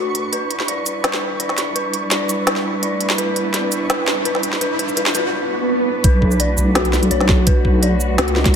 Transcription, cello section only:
0, 0, Header, 1, 2, 480
1, 0, Start_track
1, 0, Key_signature, 2, "minor"
1, 0, Tempo, 357143
1, 441, Time_signature, 4, 2, 24, 8
1, 11502, End_track
2, 0, Start_track
2, 0, Title_t, "Cello section"
2, 0, Program_c, 0, 48
2, 0, Note_on_c, 0, 57, 77
2, 0, Note_on_c, 0, 62, 72
2, 0, Note_on_c, 0, 66, 89
2, 0, Note_on_c, 0, 71, 78
2, 441, Note_off_c, 0, 57, 0
2, 596, Note_on_c, 0, 64, 83
2, 922, Note_on_c, 0, 55, 73
2, 1317, Note_off_c, 0, 66, 0
2, 8123, Note_off_c, 0, 55, 0
2, 8552, Note_on_c, 0, 66, 96
2, 8553, Note_on_c, 0, 57, 83
2, 9675, Note_off_c, 0, 64, 0
2, 11502, Note_off_c, 0, 57, 0
2, 11502, Note_off_c, 0, 62, 0
2, 11502, Note_off_c, 0, 66, 0
2, 11502, Note_off_c, 0, 71, 0
2, 11502, End_track
0, 0, End_of_file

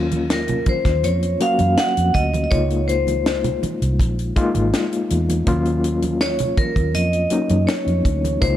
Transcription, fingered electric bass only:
0, 0, Header, 1, 3, 480
1, 0, Start_track
1, 0, Tempo, 738007
1, 1637, Time_signature, 4, 2, 24, 8
1, 5573, End_track
2, 0, Start_track
2, 0, Title_t, "Fingered electric bass"
2, 0, Program_c, 0, 33
2, 0, Note_on_c, 0, 39, 90
2, 410, Note_off_c, 0, 39, 0
2, 555, Note_on_c, 0, 39, 72
2, 678, Note_off_c, 0, 39, 0
2, 678, Note_on_c, 0, 41, 82
2, 880, Note_off_c, 0, 41, 0
2, 1038, Note_on_c, 0, 42, 78
2, 1139, Note_off_c, 0, 42, 0
2, 1284, Note_on_c, 0, 41, 70
2, 1382, Note_off_c, 0, 41, 0
2, 1397, Note_on_c, 0, 38, 76
2, 1599, Note_off_c, 0, 38, 0
2, 1637, Note_on_c, 0, 37, 88
2, 2331, Note_off_c, 0, 37, 0
2, 2484, Note_on_c, 0, 36, 79
2, 2602, Note_off_c, 0, 36, 0
2, 2602, Note_on_c, 0, 34, 84
2, 2803, Note_off_c, 0, 34, 0
2, 2966, Note_on_c, 0, 32, 79
2, 3064, Note_off_c, 0, 32, 0
2, 3325, Note_on_c, 0, 40, 75
2, 3524, Note_off_c, 0, 40, 0
2, 3559, Note_on_c, 0, 39, 99
2, 4252, Note_off_c, 0, 39, 0
2, 4398, Note_on_c, 0, 39, 78
2, 4520, Note_off_c, 0, 39, 0
2, 4520, Note_on_c, 0, 41, 75
2, 4721, Note_off_c, 0, 41, 0
2, 4879, Note_on_c, 0, 42, 79
2, 4979, Note_off_c, 0, 42, 0
2, 5116, Note_on_c, 0, 41, 78
2, 5218, Note_off_c, 0, 41, 0
2, 5239, Note_on_c, 0, 38, 72
2, 5440, Note_off_c, 0, 38, 0
2, 5477, Note_on_c, 0, 37, 84
2, 5573, Note_off_c, 0, 37, 0
2, 5573, End_track
3, 0, Start_track
3, 0, Title_t, "Muted fingered electric bass strokes"
3, 434, Note_on_c, 9, 29, 38
3, 499, Note_off_c, 9, 29, 0
3, 2365, Note_on_c, 9, 29, 41
3, 2430, Note_off_c, 9, 29, 0
3, 4279, Note_on_c, 9, 29, 37
3, 4344, Note_off_c, 9, 29, 0
3, 5573, End_track
0, 0, End_of_file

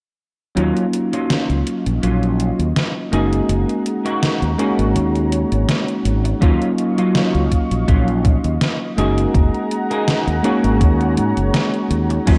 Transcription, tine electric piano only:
0, 0, Header, 1, 2, 480
1, 0, Start_track
1, 0, Key_signature, -6, "minor"
1, 0, Tempo, 731707
1, 373, Time_signature, 4, 2, 24, 8
1, 8123, End_track
2, 0, Start_track
2, 0, Title_t, "Tine electric piano"
2, 0, Program_c, 0, 4
2, 361, Note_on_c, 0, 54, 81
2, 366, Note_on_c, 0, 58, 74
2, 372, Note_on_c, 0, 61, 77
2, 376, Note_on_c, 0, 63, 75
2, 382, Note_on_c, 0, 65, 89
2, 489, Control_c, 0, 64, 127
2, 2002, Note_off_c, 0, 54, 0
2, 2005, Note_off_c, 0, 58, 0
2, 2008, Note_off_c, 0, 61, 0
2, 2010, Note_off_c, 0, 63, 0
2, 2013, Note_off_c, 0, 65, 0
2, 2043, Note_on_c, 0, 56, 74
2, 2048, Note_on_c, 0, 58, 65
2, 2052, Note_on_c, 0, 61, 65
2, 2058, Note_on_c, 0, 63, 67
2, 2060, Control_c, 0, 64, 0
2, 2062, Note_on_c, 0, 66, 80
2, 2190, Control_c, 0, 64, 127
2, 2963, Note_off_c, 0, 56, 0
2, 2966, Note_off_c, 0, 58, 0
2, 2968, Note_off_c, 0, 61, 0
2, 2971, Note_off_c, 0, 63, 0
2, 2973, Note_off_c, 0, 66, 0
2, 3003, Note_on_c, 0, 56, 87
2, 3008, Note_on_c, 0, 58, 73
2, 3014, Note_on_c, 0, 61, 75
2, 3017, Note_on_c, 0, 63, 76
2, 3019, Control_c, 0, 64, 0
2, 3023, Note_on_c, 0, 66, 95
2, 3150, Control_c, 0, 64, 127
2, 4163, Note_off_c, 0, 56, 0
2, 4166, Note_off_c, 0, 58, 0
2, 4169, Note_off_c, 0, 61, 0
2, 4170, Note_off_c, 0, 63, 0
2, 4173, Note_off_c, 0, 66, 0
2, 4200, Note_on_c, 0, 54, 83
2, 4207, Note_on_c, 0, 58, 73
2, 4211, Note_on_c, 0, 61, 75
2, 4216, Note_on_c, 0, 63, 73
2, 4219, Control_c, 0, 64, 0
2, 4221, Note_on_c, 0, 65, 92
2, 4344, Control_c, 0, 64, 127
2, 5842, Note_off_c, 0, 54, 0
2, 5845, Note_off_c, 0, 58, 0
2, 5847, Note_off_c, 0, 61, 0
2, 5850, Note_off_c, 0, 63, 0
2, 5852, Note_off_c, 0, 65, 0
2, 5882, Note_on_c, 0, 56, 76
2, 5886, Note_on_c, 0, 58, 69
2, 5892, Note_on_c, 0, 61, 71
2, 5896, Note_on_c, 0, 63, 68
2, 5901, Control_c, 0, 64, 0
2, 5902, Note_on_c, 0, 66, 80
2, 6034, Control_c, 0, 64, 127
2, 6803, Note_off_c, 0, 56, 0
2, 6805, Note_off_c, 0, 58, 0
2, 6808, Note_off_c, 0, 61, 0
2, 6810, Note_off_c, 0, 63, 0
2, 6813, Note_off_c, 0, 66, 0
2, 6839, Note_on_c, 0, 56, 88
2, 6844, Note_on_c, 0, 58, 81
2, 6850, Note_on_c, 0, 61, 79
2, 6855, Note_on_c, 0, 63, 83
2, 6859, Note_on_c, 0, 66, 94
2, 6861, Control_c, 0, 64, 0
2, 6973, Control_c, 0, 64, 127
2, 8001, Note_off_c, 0, 56, 0
2, 8004, Note_off_c, 0, 58, 0
2, 8007, Note_off_c, 0, 61, 0
2, 8009, Note_off_c, 0, 63, 0
2, 8011, Note_off_c, 0, 66, 0
2, 8040, Note_on_c, 0, 54, 84
2, 8045, Note_on_c, 0, 58, 78
2, 8050, Note_on_c, 0, 61, 82
2, 8056, Note_on_c, 0, 63, 77
2, 8060, Control_c, 0, 64, 0
2, 8060, Note_on_c, 0, 65, 93
2, 8123, Note_off_c, 0, 54, 0
2, 8123, Note_off_c, 0, 58, 0
2, 8123, Note_off_c, 0, 61, 0
2, 8123, Note_off_c, 0, 63, 0
2, 8123, Note_off_c, 0, 65, 0
2, 8123, End_track
0, 0, End_of_file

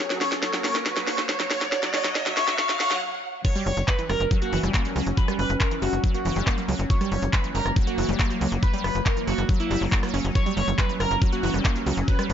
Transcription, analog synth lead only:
0, 0, Header, 1, 2, 480
1, 0, Start_track
1, 0, Key_signature, 6, "major"
1, 0, Tempo, 431655
1, 1914, Time_signature, 4, 2, 24, 8
1, 13713, End_track
2, 0, Start_track
2, 0, Title_t, "Analog synth lead"
2, 0, Program_c, 0, 81
2, 233, Note_on_c, 0, 73, 92
2, 334, Note_off_c, 0, 73, 0
2, 473, Note_on_c, 0, 73, 98
2, 574, Note_off_c, 0, 73, 0
2, 712, Note_on_c, 0, 73, 91
2, 813, Note_off_c, 0, 73, 0
2, 953, Note_on_c, 0, 73, 98
2, 1054, Note_off_c, 0, 73, 0
2, 1193, Note_on_c, 0, 73, 95
2, 1294, Note_off_c, 0, 73, 0
2, 1432, Note_on_c, 0, 73, 106
2, 1533, Note_off_c, 0, 73, 0
2, 1673, Note_on_c, 0, 73, 93
2, 1774, Note_off_c, 0, 73, 0
2, 1912, Note_on_c, 0, 73, 99
2, 2013, Note_off_c, 0, 73, 0
2, 2153, Note_on_c, 0, 73, 101
2, 2253, Note_off_c, 0, 73, 0
2, 2392, Note_on_c, 0, 73, 101
2, 2493, Note_off_c, 0, 73, 0
2, 2632, Note_on_c, 0, 73, 104
2, 2733, Note_off_c, 0, 73, 0
2, 2873, Note_on_c, 0, 73, 107
2, 2974, Note_off_c, 0, 73, 0
2, 3112, Note_on_c, 0, 73, 107
2, 3213, Note_off_c, 0, 73, 0
2, 3833, Note_on_c, 0, 73, 100
2, 3933, Note_off_c, 0, 73, 0
2, 4073, Note_on_c, 0, 73, 95
2, 4173, Note_off_c, 0, 73, 0
2, 4313, Note_on_c, 0, 71, 87
2, 4414, Note_off_c, 0, 71, 0
2, 4553, Note_on_c, 0, 70, 101
2, 4704, Note_off_c, 0, 70, 0
2, 4913, Note_on_c, 0, 66, 100
2, 5064, Note_off_c, 0, 66, 0
2, 5753, Note_on_c, 0, 71, 98
2, 5854, Note_off_c, 0, 71, 0
2, 5993, Note_on_c, 0, 71, 94
2, 6094, Note_off_c, 0, 71, 0
2, 6233, Note_on_c, 0, 70, 88
2, 6334, Note_off_c, 0, 70, 0
2, 6473, Note_on_c, 0, 66, 100
2, 6624, Note_off_c, 0, 66, 0
2, 6833, Note_on_c, 0, 66, 98
2, 6984, Note_off_c, 0, 66, 0
2, 7673, Note_on_c, 0, 73, 98
2, 7774, Note_off_c, 0, 73, 0
2, 7913, Note_on_c, 0, 73, 92
2, 8014, Note_off_c, 0, 73, 0
2, 8153, Note_on_c, 0, 71, 89
2, 8254, Note_off_c, 0, 71, 0
2, 8393, Note_on_c, 0, 70, 100
2, 8544, Note_off_c, 0, 70, 0
2, 8753, Note_on_c, 0, 66, 97
2, 8904, Note_off_c, 0, 66, 0
2, 9593, Note_on_c, 0, 71, 103
2, 9694, Note_off_c, 0, 71, 0
2, 9833, Note_on_c, 0, 71, 93
2, 9934, Note_off_c, 0, 71, 0
2, 10073, Note_on_c, 0, 70, 85
2, 10173, Note_off_c, 0, 70, 0
2, 10313, Note_on_c, 0, 66, 99
2, 10464, Note_off_c, 0, 66, 0
2, 10673, Note_on_c, 0, 64, 99
2, 10824, Note_off_c, 0, 64, 0
2, 11513, Note_on_c, 0, 73, 98
2, 11614, Note_off_c, 0, 73, 0
2, 11754, Note_on_c, 0, 73, 92
2, 11854, Note_off_c, 0, 73, 0
2, 11994, Note_on_c, 0, 71, 88
2, 12094, Note_off_c, 0, 71, 0
2, 12234, Note_on_c, 0, 70, 101
2, 12384, Note_off_c, 0, 70, 0
2, 12594, Note_on_c, 0, 66, 102
2, 12744, Note_off_c, 0, 66, 0
2, 13434, Note_on_c, 0, 71, 101
2, 13534, Note_off_c, 0, 71, 0
2, 13673, Note_on_c, 0, 71, 94
2, 13713, Note_off_c, 0, 71, 0
2, 13713, End_track
0, 0, End_of_file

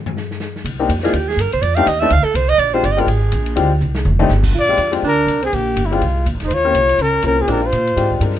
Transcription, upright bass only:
0, 0, Header, 1, 3, 480
1, 0, Start_track
1, 0, Tempo, 243902
1, 1275, Time_signature, 4, 2, 24, 8
1, 16519, End_track
2, 0, Start_track
2, 0, Title_t, "Upright bass"
2, 0, Program_c, 0, 32
2, 1268, Note_on_c, 0, 36, 88
2, 1736, Note_off_c, 0, 36, 0
2, 1750, Note_on_c, 0, 41, 94
2, 2217, Note_off_c, 0, 41, 0
2, 2233, Note_on_c, 0, 39, 81
2, 2679, Note_off_c, 0, 39, 0
2, 2691, Note_on_c, 0, 43, 83
2, 2858, Note_on_c, 0, 39, 56
2, 2887, Note_off_c, 0, 43, 0
2, 3011, Note_off_c, 0, 39, 0
2, 3023, Note_on_c, 0, 36, 74
2, 3163, Note_off_c, 0, 36, 0
2, 3175, Note_on_c, 0, 41, 87
2, 3648, Note_off_c, 0, 41, 0
2, 3671, Note_on_c, 0, 39, 93
2, 4136, Note_off_c, 0, 39, 0
2, 4149, Note_on_c, 0, 38, 87
2, 4399, Note_off_c, 0, 38, 0
2, 4609, Note_on_c, 0, 36, 97
2, 5067, Note_off_c, 0, 36, 0
2, 5079, Note_on_c, 0, 34, 84
2, 5558, Note_off_c, 0, 34, 0
2, 5580, Note_on_c, 0, 31, 96
2, 6026, Note_off_c, 0, 31, 0
2, 6038, Note_on_c, 0, 32, 84
2, 6517, Note_off_c, 0, 32, 0
2, 6541, Note_on_c, 0, 34, 91
2, 7008, Note_off_c, 0, 34, 0
2, 7027, Note_on_c, 0, 38, 92
2, 7487, Note_off_c, 0, 38, 0
2, 7499, Note_on_c, 0, 36, 96
2, 7967, Note_off_c, 0, 36, 0
2, 7976, Note_on_c, 0, 29, 89
2, 8440, Note_off_c, 0, 29, 0
2, 8452, Note_on_c, 0, 31, 98
2, 8902, Note_off_c, 0, 31, 0
2, 8914, Note_on_c, 0, 34, 81
2, 9394, Note_off_c, 0, 34, 0
2, 9404, Note_on_c, 0, 41, 89
2, 9880, Note_off_c, 0, 41, 0
2, 9893, Note_on_c, 0, 38, 77
2, 10354, Note_off_c, 0, 38, 0
2, 10366, Note_on_c, 0, 36, 83
2, 10842, Note_off_c, 0, 36, 0
2, 10883, Note_on_c, 0, 34, 82
2, 11328, Note_off_c, 0, 34, 0
2, 11339, Note_on_c, 0, 31, 88
2, 11810, Note_off_c, 0, 31, 0
2, 11832, Note_on_c, 0, 36, 87
2, 12296, Note_off_c, 0, 36, 0
2, 12316, Note_on_c, 0, 34, 89
2, 12477, Note_off_c, 0, 34, 0
2, 12477, Note_on_c, 0, 32, 56
2, 12626, Note_off_c, 0, 32, 0
2, 12638, Note_on_c, 0, 29, 70
2, 12783, Note_off_c, 0, 29, 0
2, 12796, Note_on_c, 0, 39, 77
2, 13260, Note_off_c, 0, 39, 0
2, 13271, Note_on_c, 0, 36, 95
2, 13724, Note_off_c, 0, 36, 0
2, 13736, Note_on_c, 0, 37, 79
2, 14211, Note_off_c, 0, 37, 0
2, 14235, Note_on_c, 0, 36, 86
2, 14701, Note_off_c, 0, 36, 0
2, 14712, Note_on_c, 0, 34, 78
2, 15180, Note_off_c, 0, 34, 0
2, 15201, Note_on_c, 0, 46, 92
2, 15665, Note_off_c, 0, 46, 0
2, 15676, Note_on_c, 0, 44, 81
2, 16130, Note_off_c, 0, 44, 0
2, 16142, Note_on_c, 0, 43, 86
2, 16519, Note_off_c, 0, 43, 0
2, 16519, End_track
3, 0, Start_track
3, 0, Title_t, "Muted upright bass strokes"
3, 4411, Note_on_c, 9, 29, 41
3, 4608, Note_off_c, 9, 29, 0
3, 16519, End_track
0, 0, End_of_file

